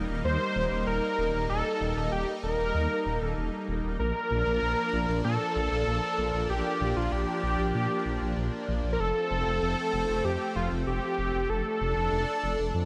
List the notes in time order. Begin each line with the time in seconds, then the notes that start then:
Already playing: G3 A#3 D#4
0.09 D#1
0.24 D#2 C5
0.56 D#1
0.71 D#1
0.87 D#1 A#4
1.18 D#1
1.34 D#1
1.50 D#1 A4
1.81 D#1
1.97 D#1
2.12 D#1 G4
2.43 D#1 A#4
2.59 D#1
2.75 D#2
3.06 D#1
3.21 D#1 A4
3.37 D#1
3.68 D#1
3.84 D#1
3.99 A#1 F3 A#3 D4 A#4
4.31 A#1
4.46 A#1
4.62 A#1
4.93 A#1
5.09 A#1
5.24 A#2 A4
5.56 A#1
5.71 A#1
5.87 A#1
6.18 A#1
6.34 A#1
6.50 A#1 G4
6.81 A#1
6.96 A#1 F4
7.12 A#1 G4
7.43 A#1
7.59 A#1
7.74 A#2
8.06 A#1
8.21 A#1
8.37 A#1
8.68 A#1
8.84 A#1
8.93 A#4
9.00 F1 A3 C4 A4
9.31 F1
9.46 F1
9.62 F1
9.93 F1
10.09 F1
10.25 F2 G4
10.56 F1 F4
10.71 F1
10.87 F1 G4
11.18 F1
11.34 F1
11.50 F1 D4 A4
11.81 F1
11.96 F1
12.12 F1
12.43 F1
12.59 F1
12.75 F2